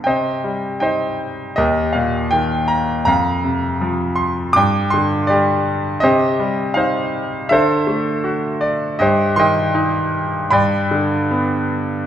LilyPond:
<<
  \new Staff \with { instrumentName = "Grand piano" } { \time 4/4 \key c \minor \tempo 4 = 80 << { g''4 g''4 ees''8 f''8 g''8 bes''8 | bes''4. c'''8 d'''8 c'''8 d''4 | ees''4 f''4 e''4. d''8 | ees''8 c'''4. b''4 r4 | } \\ { <c'' ees''>4 <c'' ees''>4 <g' bes'>2 | f''2 g''4 g'4 | <g' c''>4 c''4 <a' c''>2 | <g' c''>8 <ees'' g''>4. <d'' g''>2 | } >> }
  \new Staff \with { instrumentName = "Grand piano" } { \clef bass \time 4/4 \key c \minor c8 g8 ees'4 ees,8 bes,8 ees4 | f,8 c8 f4 g,8 d8 g4 | c8 g8 ees'4 d8 a8 fis'4 | g,8 ees8 ees'4 g,8 d8 b4 | }
>>